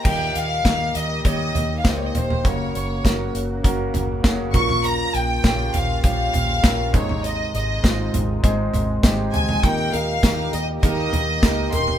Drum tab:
CC |x---------------|----------------|----------------|----------------|
HH |--x-x-x-x-x-x-x-|x-x-x-x-x-x-x-x-|x-x-x-x-x-x-x-x-|x-x-x-x-x-x-x-x-|
SD |----o-------o---|----o-------o---|----o-------o---|----o-------o---|
FT |----------o---oo|----------o---oo|------o---o---oo|------o---o---oo|
BD |o---o---o---o---|o---o---o---o-o-|----o---o---o-o-|----o---o---o---|

CC |----------------|
HH |x-x-x-x-x-x-x-x-|
SD |----o-------o---|
FT |----------o---oo|
BD |o---o---o---o---|